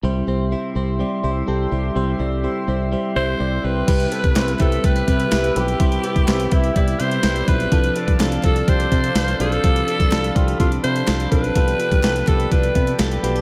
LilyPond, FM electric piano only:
<<
  \new Staff \with { instrumentName = "FM electric piano" } { \time 4/4 \key c \major \tempo 4 = 125 <c' e' g' c''>8 <c' e' g' c''>8 <c' e' g' c''>8 <c' e' g' c''>8 <c' e' g' d''>8 <c' e' g' c''>8 <c' e' g' a'>8 <c' e' g' c''>8 | <c' e' g' c''>8 <c' e' g' d''>8 <c' e' g' c''>8 <c' e' g' c''>8 <c' e' g' c''>8 <c' e' g' c''>8 <c' e' g' d''>8 <c' e' g' c''>8 | <c' e' g' b'>8 <c' e' g' a'>8 <c' e' g' c''>8 <c' e' g' b'>8 <c' e' g' b'>8 <c' e' g' b'>8 <c' e' g' b'>8 <c' e' g' b'>8 | <c' e' g' c''>8 <c' e' g' b'>8 <c' e' g' b'>8 <c' e' g' b'>8 <c' e' g' d''>8 <c' e' g' c''>8 <c' e' g' b'>8 <c' e' g' b'>8 |
<c' d' f' a'>8 <c' d' f' a'>8 <c' d' f' a'>8 <c' d' f' a'>8 <c' d' f' g'>8 <c' d' f' a'>8 <c' d' f' b'>8 <c' d' f' a'>8 | <c' d' f' a'>8 <c' d' f' a'>8 <c' d' f' a'>8 <c' d' f' g'>8 <c' d' f' a'>8 <c' d' f' g'>8 <c' d' f' a'>8 <c' d' f' a'>8 | <b f' g' a'>8 <b f' g' a'>8 <b f' g' a'>8 <b f' g' a'>8 <b f' g' b'>8 <b f' g' a'>8 <b f' g' a'>8 <b f' g' b'>8 | }
  \new Staff \with { instrumentName = "FM electric piano" } { \clef bass \time 4/4 \key c \major c4. r2 r8 | c4. r2 r8 | c4. r2 r8 | c4. r2 r8 |
c4. r2 r8 | c4. r2 r8 | c4. r2 r8 | }
>>